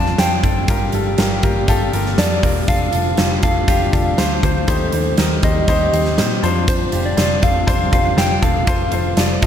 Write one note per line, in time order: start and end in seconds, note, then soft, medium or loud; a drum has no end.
0.00 0.14 F2 medium
0.00 0.66 D3 medium
0.00 0.40 F3 medium
0.00 0.64 C4 medium
0.00 0.18 D4 loud
0.00 0.18 F4 medium
0.00 0.40 F4 loud
0.00 0.67 F4 medium
0.00 0.19 C5 loud
0.00 0.70 D5 loud
0.00 0.17 A5 loud
0.06 snare soft
0.18 0.39 F2 medium
0.18 0.42 D4 medium
0.18 0.42 F4 medium
0.18 0.42 C5 medium
0.18 0.42 G5 loud
0.18 snare loud
0.18 closed hi-hat loud
0.44 0.64 F#1 loud
0.44 0.67 D4 medium
0.44 0.67 F4 medium
0.44 0.67 A4 medium
0.44 1.40 G5 medium
0.44 kick medium
0.44 closed hi-hat medium
0.68 0.89 G1 medium
0.68 1.40 G2 medium
0.68 2.66 F3 medium
0.68 2.40 G3 medium
0.68 2.66 A#3 medium
0.68 0.92 F4 medium
0.68 2.66 G4 medium
0.68 2.40 G4 medium
0.68 0.92 G4 medium
0.68 0.92 A#4 loud
0.68 kick loud
0.68 closed hi-hat loud
0.92 1.14 G1 loud
0.92 1.17 F4 medium
0.92 1.17 G4 medium
0.92 1.17 A4 medium
0.92 closed hi-hat medium
1.18 1.39 G1 medium
1.18 1.41 F4 medium
1.18 1.42 G4 medium
1.18 1.42 A#4 medium
1.18 snare loud
1.18 closed hi-hat medium
1.43 1.64 G1 medium
1.43 1.67 F4 medium
1.43 1.67 G4 medium
1.43 1.67 A#4 medium
1.43 kick loud
1.43 closed hi-hat medium
1.68 1.89 G1 loud
1.68 1.91 F4 loud
1.68 1.92 G4 loud
1.68 1.92 A4 loud
1.68 kick medium
1.68 closed hi-hat medium
1.93 2.14 G1 medium
1.93 2.16 F4 medium
1.93 2.16 G4 medium
1.93 2.17 A#4 medium
1.93 closed hi-hat medium
2.06 snare soft
2.18 2.39 F2 medium
2.18 2.41 F4 medium
2.18 2.42 G4 medium
2.18 2.42 A4 medium
2.18 2.70 D5 loud
2.18 snare loud
2.18 closed hi-hat medium
2.43 2.64 E1 medium
2.43 2.66 F4 medium
2.43 2.67 G4 medium
2.43 2.67 A#4 medium
2.43 kick medium
2.43 open hi-hat medium
2.68 2.89 F1 loud
2.68 4.66 D3 medium
2.68 4.40 F3 medium
2.68 4.66 A3 medium
2.68 2.91 D4 medium
2.68 2.91 F4 medium
2.68 4.40 F4 loud
2.68 4.66 F4 medium
2.68 2.91 A4 loud
2.68 3.43 F5 loud
2.68 kick loud
2.68 closed hi-hat loud
2.93 3.14 F1 medium
2.93 3.16 D4 medium
2.93 3.16 F4 medium
2.93 3.16 A4 medium
2.93 closed hi-hat medium
3.17 3.39 F1 medium
3.17 3.41 D4 medium
3.17 3.41 F4 medium
3.17 3.41 G4 medium
3.17 snare loud
3.17 closed hi-hat medium
3.43 3.64 F1 medium
3.43 3.66 D4 medium
3.43 3.66 F4 medium
3.43 3.66 A4 medium
3.43 4.39 F5 loud
3.43 kick loud
3.43 closed hi-hat medium
3.68 3.89 F1 loud
3.68 3.91 D4 loud
3.68 3.91 F4 medium
3.68 3.91 G4 loud
3.68 kick loud
3.68 closed hi-hat medium
3.93 4.14 F1 loud
3.93 4.16 D4 medium
3.93 4.16 F4 medium
3.93 4.16 A4 medium
3.93 kick medium
3.93 closed hi-hat medium
4.18 4.39 D2 medium
4.18 4.41 D4 medium
4.18 4.41 F4 medium
4.18 4.41 C5 medium
4.18 snare loud
4.18 closed hi-hat loud
4.43 4.64 D2 medium
4.43 4.66 D4 medium
4.43 4.66 F4 medium
4.43 4.66 C5 medium
4.43 4.67 C5 medium
4.43 kick medium
4.43 closed hi-hat medium
4.67 4.88 D#2 loud
4.67 5.39 D#3 medium
4.67 6.41 D#3 medium
4.67 5.17 A3 medium
4.67 8.64 C4 medium
4.67 4.91 D#4 medium
4.67 4.91 G4 medium
4.67 6.41 G4 medium
4.67 5.17 A4 medium
4.67 4.91 C5 loud
4.67 5.46 C5 loud
4.67 kick loud
4.67 closed hi-hat loud
4.92 5.14 D#2 medium
4.92 5.16 D#4 medium
4.92 5.16 G4 medium
4.92 5.16 C5 medium
4.92 closed hi-hat medium
5.18 5.38 D#2 loud
5.18 5.41 D#4 medium
5.18 5.41 G4 medium
5.18 5.41 A#4 medium
5.18 snare loud
5.18 closed hi-hat medium
5.43 5.63 D#2 medium
5.43 6.17 G3 medium
5.43 5.66 D#4 medium
5.43 5.66 G4 medium
5.43 6.17 G4 medium
5.43 5.66 C5 medium
5.43 5.68 D#5 medium
5.43 kick loud
5.43 closed hi-hat medium
5.68 5.88 D#2 loud
5.68 5.91 D#4 loud
5.68 5.91 G4 medium
5.68 5.91 C5 loud
5.68 6.39 D#5 medium
5.68 kick loud
5.68 closed hi-hat medium
5.93 6.20 D#2 medium
5.93 6.16 D#4 medium
5.93 6.16 G4 medium
5.93 6.16 C5 medium
5.93 closed hi-hat medium
6.06 snare soft
6.18 6.39 A#2 medium
6.18 6.41 D#4 medium
6.18 6.41 G4 medium
6.18 6.41 C5 medium
6.18 snare loud
6.18 closed hi-hat medium
6.43 6.84 F2 medium
6.43 8.65 D3 medium
6.43 7.41 F3 medium
6.43 6.89 D4 loud
6.43 9.46 F4 medium
6.43 6.89 F4 medium
6.43 7.41 F4 medium
6.43 6.89 C5 loud
6.43 closed hi-hat medium
6.68 7.07 C5 medium
6.68 kick loud
6.68 closed hi-hat loud
6.92 7.13 F1 medium
6.92 7.15 D4 medium
6.92 7.15 F4 medium
6.92 7.16 G4 medium
6.92 closed hi-hat medium
7.06 7.45 D5 loud
7.16 7.38 F1 medium
7.16 7.40 D4 medium
7.16 7.40 F4 medium
7.16 7.40 C5 medium
7.16 snare loud
7.16 closed hi-hat medium
7.42 7.63 F1 medium
7.42 7.65 D4 medium
7.42 7.65 F4 medium
7.42 7.65 A4 medium
7.42 7.93 F5 loud
7.42 kick loud
7.42 closed hi-hat medium
7.67 7.88 F1 loud
7.67 8.41 G3 medium
7.67 7.90 D4 loud
7.67 7.90 F4 medium
7.67 8.41 G4 medium
7.67 7.90 C5 loud
7.67 kick loud
7.67 closed hi-hat medium
7.91 8.13 F1 loud
7.91 8.15 D4 medium
7.91 8.15 F4 medium
7.91 8.15 C5 medium
7.91 8.20 F5 loud
7.91 kick medium
7.91 closed hi-hat medium
8.17 8.38 F1 loud
8.17 8.40 D4 medium
8.17 8.40 F4 medium
8.17 8.40 C5 medium
8.17 8.43 G5 loud
8.17 snare loud
8.17 closed hi-hat medium
8.42 8.63 E1 medium
8.42 8.65 D4 medium
8.42 8.65 F4 medium
8.42 8.65 A4 medium
8.42 9.39 F5 loud
8.42 kick medium
8.42 closed hi-hat medium
8.67 8.88 F1 loud
8.67 9.46 C3 medium
8.67 9.46 F3 medium
8.67 9.46 A3 medium
8.67 8.90 F4 loud
8.67 9.46 F4 loud
8.67 8.90 A4 medium
8.67 8.90 C5 loud
8.67 kick loud
8.67 closed hi-hat medium
8.92 9.13 F1 loud
8.92 9.15 F4 medium
8.92 9.15 A4 medium
8.92 9.15 C5 medium
8.92 closed hi-hat medium
9.17 9.38 F1 medium
9.17 9.40 F4 medium
9.17 9.40 A4 medium
9.17 9.40 D5 loud
9.17 snare loud
9.17 closed hi-hat medium
9.42 9.46 F1 medium
9.42 9.46 F4 medium
9.42 9.46 A4 medium
9.42 9.46 D#5 loud
9.42 kick loud
9.42 closed hi-hat medium